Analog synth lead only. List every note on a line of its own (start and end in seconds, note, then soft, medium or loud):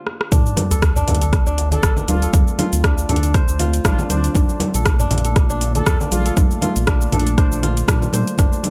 1.72 1.94 A4 medium
2.08 2.31 F4 loud
3.09 3.32 D4 loud
3.85 4.08 F4 medium
4.10 4.41 D4 medium
5.75 5.97 A4 loud
6.12 6.34 F4 loud
7.13 7.35 D4 medium
7.38 7.47 D4 medium
7.52 7.59 D4 medium